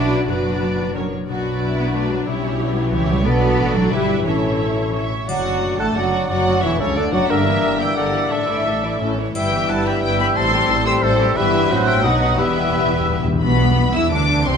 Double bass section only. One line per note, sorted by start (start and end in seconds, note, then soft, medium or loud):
0.00 0.28 B1 medium
0.28 1.10 F#1 soft
1.29 2.24 B1 soft
2.27 2.92 B1 medium
2.93 3.26 C#2 medium
3.25 3.58 B1 medium
3.59 3.92 A1 medium
3.92 4.26 G1 medium
4.26 5.10 A1 soft
5.29 5.76 F#1 soft
5.80 5.96 A1 soft
5.96 6.29 F#1 soft
6.30 6.63 F#1 medium
6.63 6.80 E1 medium
6.80 6.97 C#2 medium
6.97 7.13 D2 medium
7.13 7.20 F#1 medium
7.30 7.59 G1 medium
7.63 7.93 G1 medium
7.97 8.27 G1 soft
8.31 8.62 A1 soft
8.66 8.97 A1 soft
9.01 9.31 A1 soft
9.35 9.65 G1 soft
9.70 9.99 G1 soft
10.02 10.32 G1 soft
10.36 10.66 A1 medium
10.70 11.00 A1 medium
11.04 11.33 A1 medium
11.37 11.68 G1 medium
11.70 12.03 A1 medium
12.03 12.38 B1 medium
12.37 13.24 E1 medium
13.42 13.90 B1 medium
13.94 14.11 E2 medium
14.11 14.45 D2 medium
14.45 14.57 C2 medium